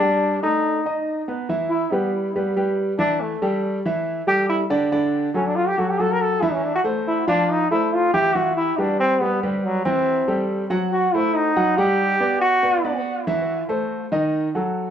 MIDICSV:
0, 0, Header, 1, 3, 480
1, 0, Start_track
1, 0, Key_signature, 1, "minor"
1, 0, Tempo, 427960
1, 1675, Time_signature, 4, 2, 24, 8
1, 16715, End_track
2, 0, Start_track
2, 0, Title_t, "Grand piano"
2, 0, Program_c, 0, 0
2, 0, Note_on_c, 0, 55, 76
2, 4, Note_on_c, 0, 67, 71
2, 390, Note_off_c, 0, 55, 0
2, 394, Note_off_c, 0, 67, 0
2, 479, Note_on_c, 0, 69, 71
2, 484, Note_on_c, 0, 57, 66
2, 871, Note_off_c, 0, 69, 0
2, 874, Note_off_c, 0, 57, 0
2, 961, Note_on_c, 0, 63, 65
2, 967, Note_on_c, 0, 75, 65
2, 1352, Note_off_c, 0, 63, 0
2, 1356, Note_off_c, 0, 75, 0
2, 1436, Note_on_c, 0, 59, 67
2, 1441, Note_on_c, 0, 71, 66
2, 1632, Note_off_c, 0, 59, 0
2, 1635, Note_off_c, 0, 71, 0
2, 1672, Note_on_c, 0, 52, 77
2, 1677, Note_on_c, 0, 76, 75
2, 1678, Note_on_c, 0, 64, 81
2, 2067, Note_off_c, 0, 52, 0
2, 2070, Note_off_c, 0, 64, 0
2, 2070, Note_off_c, 0, 76, 0
2, 2151, Note_on_c, 0, 55, 69
2, 2158, Note_on_c, 0, 67, 69
2, 2162, Note_on_c, 0, 71, 68
2, 2547, Note_off_c, 0, 55, 0
2, 2551, Note_off_c, 0, 67, 0
2, 2553, Note_off_c, 0, 71, 0
2, 2642, Note_on_c, 0, 67, 61
2, 2643, Note_on_c, 0, 55, 65
2, 2648, Note_on_c, 0, 71, 68
2, 2837, Note_off_c, 0, 55, 0
2, 2837, Note_off_c, 0, 67, 0
2, 2840, Note_off_c, 0, 71, 0
2, 2875, Note_on_c, 0, 55, 71
2, 2880, Note_on_c, 0, 67, 71
2, 2880, Note_on_c, 0, 71, 70
2, 3270, Note_off_c, 0, 55, 0
2, 3272, Note_off_c, 0, 71, 0
2, 3273, Note_off_c, 0, 67, 0
2, 3349, Note_on_c, 0, 64, 84
2, 3350, Note_on_c, 0, 52, 84
2, 3358, Note_on_c, 0, 76, 82
2, 3747, Note_off_c, 0, 52, 0
2, 3747, Note_off_c, 0, 64, 0
2, 3752, Note_off_c, 0, 76, 0
2, 3835, Note_on_c, 0, 55, 78
2, 3839, Note_on_c, 0, 67, 81
2, 3842, Note_on_c, 0, 69, 76
2, 4230, Note_off_c, 0, 55, 0
2, 4233, Note_off_c, 0, 67, 0
2, 4234, Note_off_c, 0, 69, 0
2, 4324, Note_on_c, 0, 52, 86
2, 4329, Note_on_c, 0, 64, 81
2, 4332, Note_on_c, 0, 76, 84
2, 4716, Note_off_c, 0, 52, 0
2, 4719, Note_off_c, 0, 64, 0
2, 4721, Note_off_c, 0, 76, 0
2, 4789, Note_on_c, 0, 55, 70
2, 4795, Note_on_c, 0, 67, 70
2, 4797, Note_on_c, 0, 69, 73
2, 5188, Note_off_c, 0, 55, 0
2, 5191, Note_off_c, 0, 67, 0
2, 5193, Note_off_c, 0, 69, 0
2, 5271, Note_on_c, 0, 50, 82
2, 5276, Note_on_c, 0, 74, 91
2, 5277, Note_on_c, 0, 62, 88
2, 5472, Note_off_c, 0, 50, 0
2, 5475, Note_off_c, 0, 74, 0
2, 5476, Note_off_c, 0, 62, 0
2, 5516, Note_on_c, 0, 50, 76
2, 5519, Note_on_c, 0, 62, 81
2, 5523, Note_on_c, 0, 74, 85
2, 5912, Note_off_c, 0, 50, 0
2, 5914, Note_off_c, 0, 62, 0
2, 5917, Note_off_c, 0, 74, 0
2, 5992, Note_on_c, 0, 54, 75
2, 5999, Note_on_c, 0, 66, 70
2, 6001, Note_on_c, 0, 69, 72
2, 6391, Note_off_c, 0, 54, 0
2, 6394, Note_off_c, 0, 66, 0
2, 6396, Note_off_c, 0, 69, 0
2, 6481, Note_on_c, 0, 54, 71
2, 6485, Note_on_c, 0, 66, 71
2, 6488, Note_on_c, 0, 69, 74
2, 6679, Note_off_c, 0, 54, 0
2, 6681, Note_off_c, 0, 66, 0
2, 6683, Note_off_c, 0, 69, 0
2, 6725, Note_on_c, 0, 54, 74
2, 6727, Note_on_c, 0, 66, 76
2, 6732, Note_on_c, 0, 69, 72
2, 7119, Note_off_c, 0, 54, 0
2, 7120, Note_off_c, 0, 66, 0
2, 7123, Note_off_c, 0, 69, 0
2, 7203, Note_on_c, 0, 52, 87
2, 7207, Note_on_c, 0, 64, 84
2, 7208, Note_on_c, 0, 76, 86
2, 7598, Note_off_c, 0, 52, 0
2, 7600, Note_off_c, 0, 64, 0
2, 7601, Note_off_c, 0, 76, 0
2, 7672, Note_on_c, 0, 57, 78
2, 7678, Note_on_c, 0, 69, 73
2, 7679, Note_on_c, 0, 72, 81
2, 8072, Note_off_c, 0, 57, 0
2, 8075, Note_off_c, 0, 69, 0
2, 8076, Note_off_c, 0, 72, 0
2, 8159, Note_on_c, 0, 53, 88
2, 8161, Note_on_c, 0, 65, 87
2, 8164, Note_on_c, 0, 77, 85
2, 8556, Note_off_c, 0, 53, 0
2, 8557, Note_off_c, 0, 65, 0
2, 8559, Note_off_c, 0, 77, 0
2, 8646, Note_on_c, 0, 57, 72
2, 8651, Note_on_c, 0, 69, 72
2, 8655, Note_on_c, 0, 72, 68
2, 9040, Note_off_c, 0, 57, 0
2, 9043, Note_off_c, 0, 69, 0
2, 9046, Note_off_c, 0, 72, 0
2, 9126, Note_on_c, 0, 52, 85
2, 9129, Note_on_c, 0, 64, 87
2, 9134, Note_on_c, 0, 76, 78
2, 9323, Note_off_c, 0, 52, 0
2, 9325, Note_off_c, 0, 64, 0
2, 9328, Note_off_c, 0, 76, 0
2, 9366, Note_on_c, 0, 52, 78
2, 9369, Note_on_c, 0, 64, 77
2, 9374, Note_on_c, 0, 76, 78
2, 9760, Note_off_c, 0, 52, 0
2, 9762, Note_off_c, 0, 64, 0
2, 9765, Note_off_c, 0, 76, 0
2, 9848, Note_on_c, 0, 67, 69
2, 9850, Note_on_c, 0, 55, 75
2, 9856, Note_on_c, 0, 71, 73
2, 10242, Note_off_c, 0, 67, 0
2, 10243, Note_off_c, 0, 55, 0
2, 10246, Note_off_c, 0, 71, 0
2, 10330, Note_on_c, 0, 55, 67
2, 10336, Note_on_c, 0, 67, 62
2, 10339, Note_on_c, 0, 71, 65
2, 10526, Note_off_c, 0, 55, 0
2, 10529, Note_off_c, 0, 67, 0
2, 10531, Note_off_c, 0, 71, 0
2, 10578, Note_on_c, 0, 55, 74
2, 10578, Note_on_c, 0, 67, 71
2, 10579, Note_on_c, 0, 71, 73
2, 10967, Note_off_c, 0, 55, 0
2, 10967, Note_off_c, 0, 67, 0
2, 10968, Note_off_c, 0, 71, 0
2, 11050, Note_on_c, 0, 64, 90
2, 11053, Note_on_c, 0, 52, 86
2, 11057, Note_on_c, 0, 76, 79
2, 11442, Note_off_c, 0, 64, 0
2, 11444, Note_off_c, 0, 52, 0
2, 11447, Note_off_c, 0, 76, 0
2, 11528, Note_on_c, 0, 55, 77
2, 11529, Note_on_c, 0, 69, 75
2, 11531, Note_on_c, 0, 67, 75
2, 11921, Note_off_c, 0, 55, 0
2, 11921, Note_off_c, 0, 69, 0
2, 11923, Note_off_c, 0, 67, 0
2, 12002, Note_on_c, 0, 54, 89
2, 12005, Note_on_c, 0, 66, 88
2, 12010, Note_on_c, 0, 78, 90
2, 12397, Note_off_c, 0, 54, 0
2, 12399, Note_off_c, 0, 66, 0
2, 12402, Note_off_c, 0, 78, 0
2, 12498, Note_on_c, 0, 57, 75
2, 12501, Note_on_c, 0, 69, 74
2, 12503, Note_on_c, 0, 72, 74
2, 12886, Note_off_c, 0, 57, 0
2, 12888, Note_off_c, 0, 69, 0
2, 12889, Note_off_c, 0, 72, 0
2, 12971, Note_on_c, 0, 54, 84
2, 12971, Note_on_c, 0, 66, 91
2, 12975, Note_on_c, 0, 78, 84
2, 13165, Note_off_c, 0, 54, 0
2, 13165, Note_off_c, 0, 66, 0
2, 13167, Note_off_c, 0, 78, 0
2, 13214, Note_on_c, 0, 78, 88
2, 13215, Note_on_c, 0, 55, 88
2, 13215, Note_on_c, 0, 67, 81
2, 13603, Note_off_c, 0, 55, 0
2, 13603, Note_off_c, 0, 67, 0
2, 13603, Note_off_c, 0, 78, 0
2, 13686, Note_on_c, 0, 71, 70
2, 13687, Note_on_c, 0, 59, 72
2, 13693, Note_on_c, 0, 74, 68
2, 14078, Note_off_c, 0, 59, 0
2, 14078, Note_off_c, 0, 71, 0
2, 14082, Note_off_c, 0, 74, 0
2, 14163, Note_on_c, 0, 59, 67
2, 14165, Note_on_c, 0, 71, 70
2, 14167, Note_on_c, 0, 74, 70
2, 14359, Note_off_c, 0, 59, 0
2, 14360, Note_off_c, 0, 71, 0
2, 14361, Note_off_c, 0, 74, 0
2, 14403, Note_on_c, 0, 71, 79
2, 14405, Note_on_c, 0, 59, 76
2, 14410, Note_on_c, 0, 74, 73
2, 14794, Note_off_c, 0, 71, 0
2, 14795, Note_off_c, 0, 59, 0
2, 14798, Note_off_c, 0, 74, 0
2, 14883, Note_on_c, 0, 52, 89
2, 14887, Note_on_c, 0, 64, 88
2, 14891, Note_on_c, 0, 76, 86
2, 15274, Note_off_c, 0, 52, 0
2, 15276, Note_off_c, 0, 64, 0
2, 15278, Note_off_c, 0, 76, 0
2, 15351, Note_on_c, 0, 57, 78
2, 15357, Note_on_c, 0, 69, 76
2, 15360, Note_on_c, 0, 72, 76
2, 15745, Note_off_c, 0, 57, 0
2, 15749, Note_off_c, 0, 69, 0
2, 15750, Note_off_c, 0, 72, 0
2, 15835, Note_on_c, 0, 51, 91
2, 15840, Note_on_c, 0, 63, 86
2, 15843, Note_on_c, 0, 75, 86
2, 16226, Note_off_c, 0, 51, 0
2, 16229, Note_off_c, 0, 63, 0
2, 16231, Note_off_c, 0, 75, 0
2, 16317, Note_on_c, 0, 66, 67
2, 16322, Note_on_c, 0, 54, 74
2, 16324, Note_on_c, 0, 69, 73
2, 16706, Note_off_c, 0, 66, 0
2, 16709, Note_off_c, 0, 54, 0
2, 16711, Note_off_c, 0, 69, 0
2, 16715, End_track
3, 0, Start_track
3, 0, Title_t, "Trombone"
3, 0, Program_c, 1, 57
3, 0, Note_on_c, 1, 62, 104
3, 438, Note_off_c, 1, 62, 0
3, 481, Note_on_c, 1, 63, 89
3, 1153, Note_off_c, 1, 63, 0
3, 1905, Note_on_c, 1, 64, 82
3, 2159, Note_on_c, 1, 59, 66
3, 2176, Note_off_c, 1, 64, 0
3, 2398, Note_off_c, 1, 59, 0
3, 3350, Note_on_c, 1, 62, 101
3, 3604, Note_on_c, 1, 57, 75
3, 3620, Note_off_c, 1, 62, 0
3, 3841, Note_off_c, 1, 57, 0
3, 4798, Note_on_c, 1, 67, 115
3, 5022, Note_off_c, 1, 67, 0
3, 5040, Note_on_c, 1, 64, 86
3, 5184, Note_off_c, 1, 64, 0
3, 6004, Note_on_c, 1, 61, 82
3, 6126, Note_on_c, 1, 62, 89
3, 6143, Note_off_c, 1, 61, 0
3, 6232, Note_on_c, 1, 65, 105
3, 6248, Note_off_c, 1, 62, 0
3, 6368, Note_on_c, 1, 67, 107
3, 6385, Note_off_c, 1, 65, 0
3, 6489, Note_on_c, 1, 66, 96
3, 6506, Note_off_c, 1, 67, 0
3, 6611, Note_on_c, 1, 67, 92
3, 6628, Note_off_c, 1, 66, 0
3, 6735, Note_on_c, 1, 69, 107
3, 6752, Note_off_c, 1, 67, 0
3, 6866, Note_on_c, 1, 70, 111
3, 6883, Note_off_c, 1, 69, 0
3, 6971, Note_on_c, 1, 69, 100
3, 6988, Note_off_c, 1, 70, 0
3, 7203, Note_on_c, 1, 64, 90
3, 7220, Note_off_c, 1, 69, 0
3, 7322, Note_on_c, 1, 61, 78
3, 7339, Note_off_c, 1, 64, 0
3, 7449, Note_on_c, 1, 62, 83
3, 7466, Note_off_c, 1, 61, 0
3, 7567, Note_off_c, 1, 62, 0
3, 7575, Note_on_c, 1, 66, 93
3, 7644, Note_off_c, 1, 66, 0
3, 7938, Note_on_c, 1, 64, 88
3, 8156, Note_off_c, 1, 64, 0
3, 8169, Note_on_c, 1, 62, 105
3, 8426, Note_on_c, 1, 63, 96
3, 8443, Note_off_c, 1, 62, 0
3, 8644, Note_off_c, 1, 63, 0
3, 8651, Note_on_c, 1, 64, 96
3, 8899, Note_on_c, 1, 65, 97
3, 8916, Note_off_c, 1, 64, 0
3, 9122, Note_off_c, 1, 65, 0
3, 9128, Note_on_c, 1, 67, 116
3, 9363, Note_on_c, 1, 66, 97
3, 9380, Note_off_c, 1, 67, 0
3, 9600, Note_off_c, 1, 66, 0
3, 9607, Note_on_c, 1, 64, 91
3, 9856, Note_on_c, 1, 62, 82
3, 9873, Note_off_c, 1, 64, 0
3, 10087, Note_off_c, 1, 62, 0
3, 10094, Note_on_c, 1, 60, 102
3, 10324, Note_on_c, 1, 59, 91
3, 10341, Note_off_c, 1, 60, 0
3, 10566, Note_off_c, 1, 59, 0
3, 10574, Note_on_c, 1, 50, 48
3, 10753, Note_off_c, 1, 50, 0
3, 10817, Note_on_c, 1, 54, 86
3, 11040, Note_off_c, 1, 54, 0
3, 11047, Note_on_c, 1, 60, 96
3, 11722, Note_off_c, 1, 60, 0
3, 12250, Note_on_c, 1, 66, 96
3, 12496, Note_on_c, 1, 64, 102
3, 12513, Note_off_c, 1, 66, 0
3, 12731, Note_on_c, 1, 63, 99
3, 12747, Note_off_c, 1, 64, 0
3, 13204, Note_on_c, 1, 67, 119
3, 13221, Note_off_c, 1, 63, 0
3, 13915, Note_off_c, 1, 67, 0
3, 13922, Note_on_c, 1, 66, 113
3, 14595, Note_off_c, 1, 66, 0
3, 16715, End_track
0, 0, End_of_file